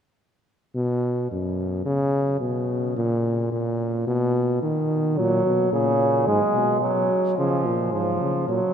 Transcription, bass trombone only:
0.75 B2
1.31 F#2
1.86 C#3
2.41 B2
2.96 A#2
3.52 A#2
4.07 B2
4.63 D#3
5.18 A#2
5.46 B2
5.72 A#2
6.27 G#2
6.55 B2
7.38 C#3
7.65 A#2
7.93 G#2
8.20 C#3
8.48 A#2

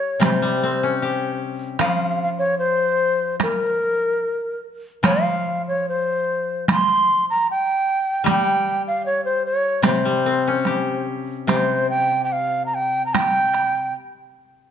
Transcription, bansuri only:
Already playing: C#5
0.24 C5
1.80 F5
1.88 F5
1.95 F5
2.04 F5
2.09 F5
2.16 F5
2.22 F5
2.39 C#5
2.59 C5
3.43 A#4
5.05 F5
5.68 C#5
5.89 C5
6.71 C6
7.30 A#5
7.51 G5
8.29 G5
8.88 F5
9.06 C#5
9.25 C5
9.46 C#5
9.86 C5
11.49 C5
11.90 G5
12.24 G5
12.32 F5
12.66 A#5
12.74 G5
13.06 A#5
13.14 G5

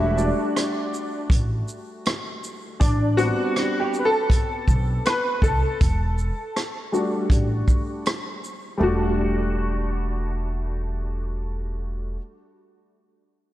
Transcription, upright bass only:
Already playing: E1
1.30 A1
2.81 A1
4.68 B1
5.42 C2
5.81 E1
7.30 A1
8.81 E1

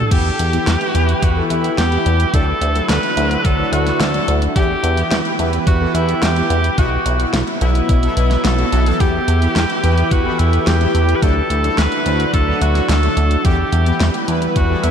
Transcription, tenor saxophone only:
Already playing: A4
0.12 G4
1.23 F#4
1.43 F#4
1.51 E4
1.78 G4
2.34 A4
2.89 B4
3.45 A4
3.72 F#4
4.00 A4
4.56 G4
5.67 F#4
5.95 E4
6.23 G4
6.78 F#4
7.62 E4
8.45 A4
9.00 G4
10.11 F#4
10.39 E4
10.67 G4
11.16 B4
11.23 A4
11.78 B4
12.34 A4
12.62 F#4
12.89 A4
13.45 G4
14.56 F#4
14.84 E4

